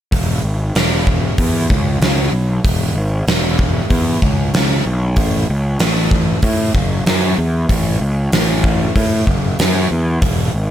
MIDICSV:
0, 0, Header, 1, 3, 480
1, 0, Start_track
1, 0, Key_signature, 4, "major"
1, 0, Tempo, 630915
1, 92, Time_signature, 4, 2, 24, 8
1, 8145, End_track
2, 0, Start_track
2, 0, Title_t, "Picked electric bass"
2, 0, Program_c, 0, 34
2, 91, Note_on_c, 0, 28, 88
2, 292, Note_off_c, 0, 28, 0
2, 331, Note_on_c, 0, 32, 84
2, 532, Note_off_c, 0, 32, 0
2, 576, Note_on_c, 0, 28, 86
2, 975, Note_off_c, 0, 28, 0
2, 1053, Note_on_c, 0, 40, 85
2, 1252, Note_off_c, 0, 40, 0
2, 1295, Note_on_c, 0, 37, 83
2, 1493, Note_off_c, 0, 37, 0
2, 1527, Note_on_c, 0, 37, 90
2, 1729, Note_off_c, 0, 37, 0
2, 1763, Note_on_c, 0, 35, 89
2, 1966, Note_off_c, 0, 35, 0
2, 2013, Note_on_c, 0, 28, 92
2, 2212, Note_off_c, 0, 28, 0
2, 2245, Note_on_c, 0, 32, 93
2, 2447, Note_off_c, 0, 32, 0
2, 2491, Note_on_c, 0, 28, 93
2, 2892, Note_off_c, 0, 28, 0
2, 2970, Note_on_c, 0, 40, 93
2, 3170, Note_off_c, 0, 40, 0
2, 3215, Note_on_c, 0, 37, 84
2, 3413, Note_off_c, 0, 37, 0
2, 3451, Note_on_c, 0, 37, 88
2, 3651, Note_off_c, 0, 37, 0
2, 3697, Note_on_c, 0, 35, 90
2, 3933, Note_off_c, 0, 35, 0
2, 3933, Note_on_c, 0, 33, 91
2, 4132, Note_off_c, 0, 33, 0
2, 4182, Note_on_c, 0, 37, 88
2, 4378, Note_off_c, 0, 37, 0
2, 4413, Note_on_c, 0, 33, 86
2, 4814, Note_off_c, 0, 33, 0
2, 4890, Note_on_c, 0, 45, 87
2, 5091, Note_off_c, 0, 45, 0
2, 5129, Note_on_c, 0, 30, 88
2, 5330, Note_off_c, 0, 30, 0
2, 5371, Note_on_c, 0, 42, 85
2, 5572, Note_off_c, 0, 42, 0
2, 5617, Note_on_c, 0, 40, 91
2, 5816, Note_off_c, 0, 40, 0
2, 5852, Note_on_c, 0, 33, 91
2, 6053, Note_off_c, 0, 33, 0
2, 6092, Note_on_c, 0, 37, 86
2, 6293, Note_off_c, 0, 37, 0
2, 6335, Note_on_c, 0, 33, 88
2, 6737, Note_off_c, 0, 33, 0
2, 6814, Note_on_c, 0, 45, 92
2, 7015, Note_off_c, 0, 45, 0
2, 7052, Note_on_c, 0, 30, 84
2, 7254, Note_off_c, 0, 30, 0
2, 7300, Note_on_c, 0, 42, 85
2, 7499, Note_off_c, 0, 42, 0
2, 7539, Note_on_c, 0, 40, 86
2, 7738, Note_off_c, 0, 40, 0
2, 7773, Note_on_c, 0, 28, 94
2, 7975, Note_off_c, 0, 28, 0
2, 8022, Note_on_c, 0, 32, 89
2, 8145, Note_off_c, 0, 32, 0
2, 8145, End_track
3, 0, Start_track
3, 0, Title_t, "Drums"
3, 94, Note_on_c, 9, 36, 105
3, 96, Note_on_c, 9, 46, 56
3, 170, Note_off_c, 9, 36, 0
3, 172, Note_off_c, 9, 46, 0
3, 573, Note_on_c, 9, 46, 56
3, 579, Note_on_c, 9, 38, 110
3, 649, Note_off_c, 9, 46, 0
3, 656, Note_off_c, 9, 38, 0
3, 814, Note_on_c, 9, 36, 86
3, 890, Note_off_c, 9, 36, 0
3, 1051, Note_on_c, 9, 46, 57
3, 1052, Note_on_c, 9, 36, 81
3, 1127, Note_off_c, 9, 46, 0
3, 1128, Note_off_c, 9, 36, 0
3, 1294, Note_on_c, 9, 36, 86
3, 1370, Note_off_c, 9, 36, 0
3, 1533, Note_on_c, 9, 46, 55
3, 1540, Note_on_c, 9, 38, 110
3, 1609, Note_off_c, 9, 46, 0
3, 1616, Note_off_c, 9, 38, 0
3, 2013, Note_on_c, 9, 36, 103
3, 2013, Note_on_c, 9, 46, 56
3, 2089, Note_off_c, 9, 36, 0
3, 2089, Note_off_c, 9, 46, 0
3, 2492, Note_on_c, 9, 46, 57
3, 2499, Note_on_c, 9, 38, 107
3, 2568, Note_off_c, 9, 46, 0
3, 2575, Note_off_c, 9, 38, 0
3, 2732, Note_on_c, 9, 36, 87
3, 2808, Note_off_c, 9, 36, 0
3, 2969, Note_on_c, 9, 46, 55
3, 2971, Note_on_c, 9, 36, 84
3, 3045, Note_off_c, 9, 46, 0
3, 3047, Note_off_c, 9, 36, 0
3, 3212, Note_on_c, 9, 36, 87
3, 3288, Note_off_c, 9, 36, 0
3, 3453, Note_on_c, 9, 46, 51
3, 3460, Note_on_c, 9, 38, 112
3, 3529, Note_off_c, 9, 46, 0
3, 3536, Note_off_c, 9, 38, 0
3, 3927, Note_on_c, 9, 46, 54
3, 3931, Note_on_c, 9, 36, 107
3, 4003, Note_off_c, 9, 46, 0
3, 4008, Note_off_c, 9, 36, 0
3, 4409, Note_on_c, 9, 46, 58
3, 4415, Note_on_c, 9, 38, 108
3, 4485, Note_off_c, 9, 46, 0
3, 4491, Note_off_c, 9, 38, 0
3, 4651, Note_on_c, 9, 36, 88
3, 4727, Note_off_c, 9, 36, 0
3, 4887, Note_on_c, 9, 46, 57
3, 4891, Note_on_c, 9, 36, 80
3, 4963, Note_off_c, 9, 46, 0
3, 4967, Note_off_c, 9, 36, 0
3, 5132, Note_on_c, 9, 36, 86
3, 5208, Note_off_c, 9, 36, 0
3, 5374, Note_on_c, 9, 46, 57
3, 5381, Note_on_c, 9, 38, 108
3, 5450, Note_off_c, 9, 46, 0
3, 5457, Note_off_c, 9, 38, 0
3, 5853, Note_on_c, 9, 46, 60
3, 5854, Note_on_c, 9, 36, 107
3, 5929, Note_off_c, 9, 46, 0
3, 5930, Note_off_c, 9, 36, 0
3, 6333, Note_on_c, 9, 46, 60
3, 6340, Note_on_c, 9, 38, 106
3, 6409, Note_off_c, 9, 46, 0
3, 6416, Note_off_c, 9, 38, 0
3, 6573, Note_on_c, 9, 36, 85
3, 6649, Note_off_c, 9, 36, 0
3, 6813, Note_on_c, 9, 46, 54
3, 6814, Note_on_c, 9, 36, 81
3, 6889, Note_off_c, 9, 46, 0
3, 6890, Note_off_c, 9, 36, 0
3, 7054, Note_on_c, 9, 36, 82
3, 7130, Note_off_c, 9, 36, 0
3, 7296, Note_on_c, 9, 46, 54
3, 7302, Note_on_c, 9, 38, 113
3, 7372, Note_off_c, 9, 46, 0
3, 7378, Note_off_c, 9, 38, 0
3, 7774, Note_on_c, 9, 46, 54
3, 7776, Note_on_c, 9, 36, 112
3, 7850, Note_off_c, 9, 46, 0
3, 7853, Note_off_c, 9, 36, 0
3, 8145, End_track
0, 0, End_of_file